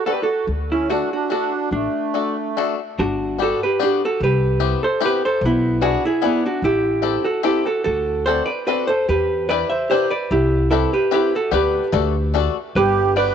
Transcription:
0.06 five-string banjo B3 D4 F#4 A4, accordion F#4, hollow-body jazz guitar A4
0.13 accordion G4, hollow-body jazz guitar B4
0.22 accordion F#4, hollow-body jazz guitar A4
0.47 upright bass D2
0.71 accordion C#4, hollow-body jazz guitar E4
0.89 five-string banjo A3 D4 F#4 A4, accordion D4, hollow-body jazz guitar F#4
1.13 accordion D4, hollow-body jazz guitar F#4
1.30 five-string banjo A3 D4 F#4 A4, accordion D4, hollow-body jazz guitar F#4
1.71 upright bass A1, accordion A3, hollow-body jazz guitar D4
2.14 five-string banjo A3 D4 F#4 A4
2.57 five-string banjo A3 D4 F#4 A4
2.99 upright bass G1, hollow-body jazz guitar D4 F#4
3.38 five-string banjo B3 D4 F#4 G4, hollow-body jazz guitar F#4
3.43 hollow-body jazz guitar A4
3.63 hollow-body jazz guitar G4 B4
3.79 five-string banjo B3 D4 F#4 G4, hollow-body jazz guitar D4
3.84 hollow-body jazz guitar G4
4.05 hollow-body jazz guitar F#4 A4
4.20 upright bass C2, hollow-body jazz guitar G4 B4
4.60 five-string banjo B3 C4 E4 G4
4.83 hollow-body jazz guitar A4 C5
5.00 five-string banjo B3 C4 E4 G4
5.05 hollow-body jazz guitar G4 B4
5.25 hollow-body jazz guitar A4 C5
5.41 upright bass B1
5.45 hollow-body jazz guitar B3 E4
5.81 five-string banjo B3 D4 E4 G#4, hollow-body jazz guitar D4 F#4
6.05 hollow-body jazz guitar E4 G#4
6.22 five-string banjo B3 D4 E4 G#4, hollow-body jazz guitar B3 E4
6.46 hollow-body jazz guitar D4 F#4
6.62 upright bass A1, hollow-body jazz guitar E4 G4
7.02 five-string banjo C4 E4 G4 A4
7.24 hollow-body jazz guitar F#4 A4
7.43 five-string banjo C4 E4 G4 A4, hollow-body jazz guitar E4 G4
7.66 hollow-body jazz guitar F#4 A4
7.84 upright bass D2, hollow-body jazz guitar F#4 A4
8.26 five-string banjo C4 D4 F#4 A4, hollow-body jazz guitar A4 C5
8.46 hollow-body jazz guitar B4 D5
8.67 five-string banjo C4 D4 F#4 A4, hollow-body jazz guitar F#4 B4
8.87 hollow-body jazz guitar A4 C5
9.09 upright bass E2, hollow-body jazz guitar G4 B4
9.49 five-string banjo D4 E4 G4 B4, hollow-body jazz guitar B4 D5
9.70 hollow-body jazz guitar C5 E5
9.90 five-string banjo D4 E4 G4 B4, hollow-body jazz guitar G4 C5
10.10 hollow-body jazz guitar B4 D5
10.31 upright bass C2, hollow-body jazz guitar E4 G4
10.71 five-string banjo C4 E4 G4 B4, hollow-body jazz guitar E4 A4
10.93 hollow-body jazz guitar G4 B4
11.11 five-string banjo C4 E4 G4 B4, hollow-body jazz guitar E4 G4
11.35 hollow-body jazz guitar F#4 A4
11.51 upright bass D2, five-string banjo B3 D4 G4 B4, hollow-body jazz guitar G4 B4
11.92 upright bass D2, five-string banjo A3 D4 F#4 A4
12.34 five-string banjo A3 D4 F#4 A4
12.75 upright bass G1, accordion G4, hollow-body jazz guitar G4 B4
13.16 five-string banjo B3 D4 F#4 G4, accordion B4, hollow-body jazz guitar B4 D5

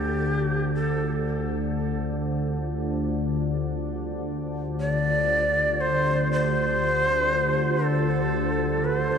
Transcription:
Already playing: synth drone D2 D3, ambient pad D3 F4 G4 C5, shakuhachi G4
0.75 shakuhachi A4
4.80 shakuhachi D5
5.81 shakuhachi C5
6.33 shakuhachi C5
7.84 shakuhachi A4
8.85 shakuhachi B4
8.99 shakuhachi C5

